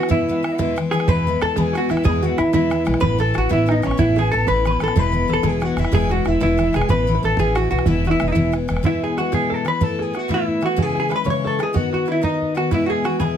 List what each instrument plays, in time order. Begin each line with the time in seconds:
Already playing: hollow-body jazz guitar F#4, tin whistle F#5
0.03 bodhran
0.08 steel-string acoustic guitar E2 B2 E3 G#3 B3 E4, five-string banjo E4, hollow-body jazz guitar E4, tin whistle E5, bodhran
0.28 steel-string acoustic guitar E3 G#3 B3 E4, tin whistle F#5, bodhran
0.35 tin whistle E5
0.43 steel-string acoustic guitar E3 G#3 B3 E4, bodhran
0.52 tin whistle D#5 F#5
0.58 steel-string acoustic guitar E2 B2 E3 G#3 B3 E4, tin whistle E5, bodhran
0.76 steel-string acoustic guitar E3 G#3 B3 E4, bodhran
0.91 steel-string acoustic guitar E3 G#3 B3 E4, hollow-body jazz guitar G#4, five-string banjo G#4, tin whistle G#5, bodhran
1.00 bodhran
1.08 upright bass E2, steel-string acoustic guitar E2 B2 E3 G#3 B3 E4, five-string banjo B4, hollow-body jazz guitar B4, tin whistle B5, bodhran
1.26 steel-string acoustic guitar E3 G#3 B3 E4, bodhran
1.41 upright bass E2, steel-string acoustic guitar E3 G#3 B3 E4, five-string banjo A4, hollow-body jazz guitar A4, tin whistle A5, bodhran
1.56 steel-string acoustic guitar E2 B2 E3 G#3 B3 E4, upright bass E2, five-string banjo G#4, hollow-body jazz guitar G#4, tin whistle B5, bodhran
1.61 tin whistle G#5
1.73 steel-string acoustic guitar E3 G#3 B3 E4, five-string banjo F#4, bodhran
1.77 hollow-body jazz guitar F#4
1.89 upright bass E2, steel-string acoustic guitar E3 G#3 B3 E4, five-string banjo E4, hollow-body jazz guitar E4, tin whistle E5, bodhran
1.97 bodhran
2.04 steel-string acoustic guitar E2 B2 E3 G#3 B3 E4, upright bass E2, five-string banjo G#4, hollow-body jazz guitar G#4, tin whistle B5, bodhran
2.11 tin whistle G#5
2.22 steel-string acoustic guitar E3 G#3 B3 E4, hollow-body jazz guitar F#4, tin whistle F#5, bodhran
2.38 upright bass E2, steel-string acoustic guitar E3 G#3 B3 E4, hollow-body jazz guitar E4, five-string banjo E4, tin whistle E5, bodhran
2.53 steel-string acoustic guitar E2 B2 E3 G#3 B3 E4, upright bass E2, hollow-body jazz guitar E4, five-string banjo E4, bodhran
2.57 tin whistle E5
2.70 steel-string acoustic guitar E3 G#3 B3 E4, bodhran
2.85 upright bass B1, steel-string acoustic guitar E3 G#3 B3 E4, bodhran
2.94 bodhran
3.00 upright bass A1, steel-string acoustic guitar A2 E3 B3 C#4 E4, hollow-body jazz guitar B4, five-string banjo B4, tin whistle B5, bodhran
3.18 steel-string acoustic guitar E3 B3 C#4 E4, hollow-body jazz guitar A4, five-string banjo A4, tin whistle A5, bodhran
3.34 upright bass A1, steel-string acoustic guitar E3 B3 C#4 E4, five-string banjo F#4, tin whistle F#5, bodhran
3.38 hollow-body jazz guitar F#4
3.49 upright bass A1, steel-string acoustic guitar A2 E3 B3 C#4 E4, five-string banjo E4, hollow-body jazz guitar E4, tin whistle E5, bodhran
3.66 steel-string acoustic guitar E3 B3 C#4 E4, five-string banjo D#4, tin whistle D#5, bodhran
3.71 hollow-body jazz guitar D#4
3.80 steel-string acoustic guitar E3 B3 C#4, five-string banjo C#4 D#4, bodhran
3.84 upright bass A1, hollow-body jazz guitar C#4, steel-string acoustic guitar E4, tin whistle C#6
3.91 bodhran
3.97 upright bass A1, steel-string acoustic guitar A2 E3 B3 C#4 E4, five-string banjo E4, hollow-body jazz guitar E4, tin whistle F#5, bodhran
4.05 tin whistle E5
4.16 steel-string acoustic guitar E3 B3 C#4 E4, five-string banjo G#4, hollow-body jazz guitar G#4, tin whistle G#5, bodhran
4.32 upright bass A1, steel-string acoustic guitar E3 B3 C#4 E4, hollow-body jazz guitar A4, five-string banjo A4
4.36 tin whistle A5
4.47 upright bass A1, steel-string acoustic guitar A2 E3 B3 C#4 E4, five-string banjo B4, hollow-body jazz guitar B4, tin whistle B5, bodhran
4.65 steel-string acoustic guitar E3 B3 C#4 E4, five-string banjo B4, hollow-body jazz guitar B4, tin whistle C#6, bodhran
4.72 tin whistle B5
4.80 upright bass A1, steel-string acoustic guitar E3 B3 C#4 E4, five-string banjo A4, hollow-body jazz guitar A4, bodhran
4.88 bodhran
4.96 upright bass E1, steel-string acoustic guitar E2 B2 E3 G#3 B3 E4, five-string banjo B4, hollow-body jazz guitar B4, tin whistle B5, bodhran
5.12 steel-string acoustic guitar E3 G#3 B3 E4, bodhran
5.28 upright bass E1, steel-string acoustic guitar E3 G#3 B3 E4, five-string banjo A4
5.33 hollow-body jazz guitar A4
5.43 upright bass E1, steel-string acoustic guitar E2 B2 E3 G#3 B3 E4, five-string banjo G#4, tin whistle G#5, bodhran
5.49 hollow-body jazz guitar G#4
5.60 steel-string acoustic guitar E3 G#3 B3 E4, five-string banjo F#4, tin whistle F#5, bodhran
5.65 hollow-body jazz guitar F#4
5.77 upright bass E1, steel-string acoustic guitar E3 G#3 B3 E4, five-string banjo E4, tin whistle E5, bodhran
5.81 hollow-body jazz guitar E4, bodhran
5.92 upright bass E1, steel-string acoustic guitar E2 B2 E3 G#3 B3 E4, five-string banjo G#4, hollow-body jazz guitar G#4, tin whistle G#5, bodhran
6.09 steel-string acoustic guitar E3 G#3 B3 E4, five-string banjo F#4, hollow-body jazz guitar F#4, tin whistle F#5, bodhran
6.24 upright bass E1, steel-string acoustic guitar E3 G#3 B3 E4, five-string banjo E4, hollow-body jazz guitar E4, tin whistle E5, bodhran
6.40 upright bass E1, steel-string acoustic guitar E2 B2 E3 G#3 B3 E4, five-string banjo E4, hollow-body jazz guitar E4, tin whistle E5, bodhran
6.57 steel-string acoustic guitar E3 G#3 B3 E4, bodhran
6.73 upright bass E1, steel-string acoustic guitar E3 G#3 B3 E4, five-string banjo G#4, hollow-body jazz guitar G#4, tin whistle G#5, bodhran
6.82 bodhran
6.89 upright bass A1, steel-string acoustic guitar A2 E3 B3 C#4 E4, hollow-body jazz guitar B4, five-string banjo B4, tin whistle B5, bodhran
7.04 steel-string acoustic guitar E3, five-string banjo B4, bodhran
7.08 steel-string acoustic guitar B3 C#4 E4
7.15 five-string banjo B4
7.23 upright bass A1, steel-string acoustic guitar E3 B3 C#4 E4, five-string banjo A4, hollow-body jazz guitar A4, tin whistle A5
7.37 upright bass A1, steel-string acoustic guitar A2 E3 B3 C#4 E4, five-string banjo G#4, hollow-body jazz guitar G#4, tin whistle G#5, bodhran
7.55 steel-string acoustic guitar E3 B3 C#4 E4, hollow-body jazz guitar F#4, five-string banjo F#4, bodhran
7.71 upright bass B1, steel-string acoustic guitar E3 B3 C#4 E4, hollow-body jazz guitar F#4, five-string banjo F#4
7.79 bodhran
7.85 upright bass E1, steel-string acoustic guitar E2 B2 E3 G#3 B3 E4, five-string banjo E4, hollow-body jazz guitar E4, tin whistle E5, bodhran
8.05 steel-string acoustic guitar E3 G#3 B3 E4, hollow-body jazz guitar F#4
8.10 five-string banjo E4, hollow-body jazz guitar E4, tin whistle E5
8.20 upright bass E1, steel-string acoustic guitar E3 G#3 B3 E4, bodhran
8.28 hollow-body jazz guitar D#4, five-string banjo E4, tin whistle E5
8.32 upright bass E1, steel-string acoustic guitar E2 B2 E3 G#3 B3 E4, hollow-body jazz guitar E4, bodhran
8.52 steel-string acoustic guitar E3 G#3 B3 E4, bodhran
8.68 upright bass E1, steel-string acoustic guitar E3 G#3 B3 E4, bodhran
8.77 bodhran
8.83 steel-string acoustic guitar E2 B2 E3 G#3 B3 E4, five-string banjo E4, hollow-body jazz guitar E4, tin whistle F#5, bodhran
8.89 tin whistle E5
9.02 hollow-body jazz guitar G#4, tin whistle G#5, bodhran
9.17 steel-string acoustic guitar E3 G#3 B3 E4, five-string banjo F#4, hollow-body jazz guitar F#4, tin whistle F#5, bodhran
9.32 steel-string acoustic guitar E2 B2 E3 G#3 B3 E4, five-string banjo G#4, hollow-body jazz guitar G#4, tin whistle G#5, bodhran
9.50 five-string banjo A4, tin whistle A5, bodhran
9.54 hollow-body jazz guitar A4
9.65 steel-string acoustic guitar E3 G#3 B3 E4, five-string banjo B4, hollow-body jazz guitar B4, tin whistle B5, bodhran
9.81 steel-string acoustic guitar A2 E3 A3 B3 E4, five-string banjo A4, hollow-body jazz guitar A4, tin whistle A5, bodhran
9.99 five-string banjo G#4, hollow-body jazz guitar G#4, tin whistle G#5, bodhran
10.13 steel-string acoustic guitar E3 A3 B3 E4, five-string banjo F#4, tin whistle F#5, bodhran
10.19 hollow-body jazz guitar F#4
10.28 steel-string acoustic guitar A2 E3 A3 B3 E4, five-string banjo E4, tin whistle E5, bodhran
10.34 hollow-body jazz guitar E4
10.46 tin whistle E5, bodhran
10.61 steel-string acoustic guitar E3 A3 B3 E4, five-string banjo F#4, tin whistle F#5, bodhran
10.66 hollow-body jazz guitar F#4
10.76 steel-string acoustic guitar C#3 E3 G#3 C#4 E4, five-string banjo G#4, tin whistle G#5, bodhran
10.82 hollow-body jazz guitar G#4
10.95 five-string banjo G#4, bodhran
11.00 hollow-body jazz guitar G#4
11.09 steel-string acoustic guitar E3 G#3 C#4 E4, five-string banjo B4, tin whistle B5, bodhran
11.16 hollow-body jazz guitar B4
11.24 steel-string acoustic guitar C#3 E3 G#3 C#4 E4, five-string banjo C#5, tin whistle C#6, bodhran
11.30 hollow-body jazz guitar C#5
11.44 five-string banjo A4, hollow-body jazz guitar A4, bodhran
11.59 steel-string acoustic guitar E3 G#3 C#4 E4, five-string banjo G#4, tin whistle G#5, bodhran
11.63 hollow-body jazz guitar G#4
11.73 steel-string acoustic guitar D#3 B3 D#4 F#4, five-string banjo F#4, hollow-body jazz guitar F#4, tin whistle F#5, bodhran
11.92 five-string banjo F#4, hollow-body jazz guitar F#4, tin whistle F#5, bodhran
12.06 steel-string acoustic guitar D#3 B3 D#4 F#4, five-string banjo E4, tin whistle E5
12.12 hollow-body jazz guitar E4
12.21 steel-string acoustic guitar D#3 B3 D#4 F#4, five-string banjo D#4, hollow-body jazz guitar D#4, tin whistle D#5, bodhran
12.42 bodhran
12.54 steel-string acoustic guitar D#3 B3 D#4 F#4, five-string banjo F#4, hollow-body jazz guitar F#4, tin whistle F#5, bodhran
12.68 steel-string acoustic guitar E2 B2 E3 G#3, five-string banjo E4, tin whistle F#5, bodhran
12.72 steel-string acoustic guitar B3 E4, hollow-body jazz guitar E4, tin whistle E5
12.86 hollow-body jazz guitar F#4 G#4, five-string banjo G#4, tin whistle G#5, bodhran
13.04 steel-string acoustic guitar E3 G#3 B3 E4, hollow-body jazz guitar F#4, five-string banjo F#4, bodhran
13.19 steel-string acoustic guitar E2 B2 E3 G#3 B3 E4, five-string banjo G#4, hollow-body jazz guitar G#4, tin whistle B5, bodhran
13.24 tin whistle G#5